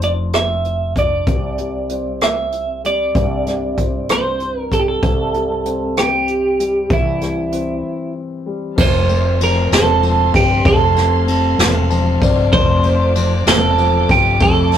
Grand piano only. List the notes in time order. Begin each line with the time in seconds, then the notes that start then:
Already playing: F3 D4 F4
0.02 F4
0.96 D4
1.27 C3
1.59 G3
1.90 C4
2.84 G3
3.15 G2
3.46 G3
3.78 C4
4.71 G3
5.02 C3
5.35 G3
5.66 C4
6.59 G3
6.91 E3
7.22 G3
7.52 C4
8.46 G3
8.76 F3
9.09 C4
9.40 F3
9.72 C4
10.03 F3
10.34 C4
10.65 C3
10.96 C4
11.27 F3
11.58 C4
11.90 F3 A5
12.21 C4 D5
12.51 F3
12.84 C4
13.16 F3
13.48 C4
13.79 F3
14.10 C4
14.41 A3
14.72 C4